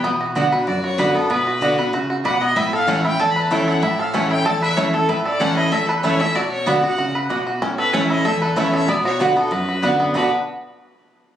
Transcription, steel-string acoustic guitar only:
\new Staff \with { instrumentName = "Steel-string acoustic guitar" } { \time 4/4 \key b \minor \tempo 4 = 190 << { r4 <d b d' fis'>8 <d' fis'>8 r4 <d b d' fis'>8 <d' fis'>8 | r4 <d b d' fis'>8 <d' fis'>8 r2 | r4 <e a cis' e'>8 <cis' e'>8 r4 <e a cis' e'>4 | r4 <e a cis' e'>4 r4 <e a cis' e'>8 <cis' e'>8 |
r4 <e a cis' e'>4 r4 <e a cis' e'>8 <cis' e'>8 | r4 <d b d' fis'>8 <d' fis'>8 r2 | r4 <e a cis' e'>4 r4 <e a cis' e'>4 | r4 <d b d' fis'>8 <d' fis'>8 r4 <d b d' fis'>4 |
<b, d b d' fis'>8 r2. r8 | } \\ { b,2 fis,2 | b,2 cis4 b,4 | a,2 e,2 | a,2 e,2 |
a,2 e,2 | b,2 cis4 b,4 | a,2 e,2 | b,2 fis,2 |
r1 | } >> }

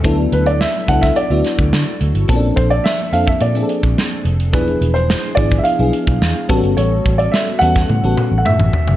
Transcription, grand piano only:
\new Staff \with { instrumentName = "Grand piano" } { \time 4/4 \key a \mixolydian \tempo 4 = 107 r8 b'16 d''16 e''8 fis''16 e''16 d''4. r8 | r8 c''16 d''16 e''8 f''16 e''16 d''4. r8 | b'8. c''8. d''16. e''32 f''4. r8 | cis''8. d''16 e''8 fis''4~ fis''16. fis''32 e''4 | }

